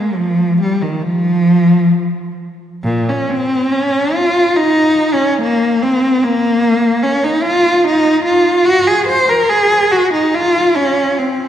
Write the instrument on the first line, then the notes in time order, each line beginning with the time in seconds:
cello
Already playing: G#3
0.17 F3
0.62 G3
0.82 D#3
1.02 F3
2.84 A#2
3.09 C#4
3.30 C4
3.72 C#4
4.13 F4
4.57 D#4
5.14 C#4
5.42 A#3
5.82 C4
6.24 A#3
7.03 C#4
7.24 D#4
7.43 F4
7.84 D#4
8.25 F4
8.65 F#4
8.87 G#4
9.08 C5
9.29 A#4
9.49 G#4
9.92 F#4
10.13 D#4
10.35 F4
10.77 C#4
11.19 C4